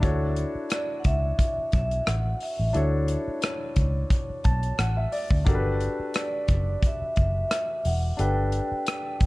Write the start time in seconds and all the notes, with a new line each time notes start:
0.00 D2 D4 E4 F#4 A4 C#5, kick, closed hi-hat
0.36 closed hi-hat
0.55 muted fingered electric bass stroke
0.70 D5, cross-stick, closed hi-hat
1.00 F#5
1.04 C#2 E5, kick, closed hi-hat
1.39 kick, closed hi-hat
1.58 muted fingered electric bass stroke
1.72 B1 E5, kick, closed hi-hat
1.91 closed hi-hat
2.07 A1 F#5, cross-stick, closed hi-hat
2.40 E5, open hi-hat
2.59 A1
2.73 D2 D4 E4 F#4 A4 C#5, closed hi-hat
3.08 closed hi-hat
3.28 muted fingered electric bass stroke
3.42 cross-stick, closed hi-hat
3.76 C#2, kick, closed hi-hat
4.10 kick, closed hi-hat
4.30 muted fingered electric bass stroke
4.44 B1 A5, kick, closed hi-hat
4.63 closed hi-hat
4.79 A1 F#5, cross-stick, closed hi-hat
4.97 E5
5.12 D5, open hi-hat
5.31 D2, kick
5.45 G1 D4 F#4 G4 A4 A#4, kick, closed hi-hat
5.55 B4
5.80 closed hi-hat
6.00 muted fingered electric bass stroke
6.14 cross-stick, closed hi-hat
6.18 D5
6.48 F#1, kick, closed hi-hat
6.83 kick, closed hi-hat
6.87 E5
7.02 muted fingered electric bass stroke
7.16 F#1, kick, closed hi-hat
7.20 E5
7.51 cross-stick, closed hi-hat
7.85 E1 F#5, open hi-hat
8.17 G1 D4 G4 A4 B4 G5, closed hi-hat
8.52 closed hi-hat
8.72 muted fingered electric bass stroke
8.87 cross-stick, closed hi-hat
9.20 G1, kick, closed hi-hat